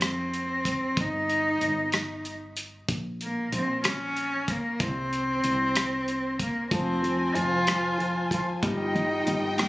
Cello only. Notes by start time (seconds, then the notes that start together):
0.04 C4
1.00 D#4
3.23 A#3
3.55 C4
3.85 C#4
4.51 A#3
4.81 C4
6.42 A#3
6.72 C4
7.35 F4
8.33 F4
8.65 D#4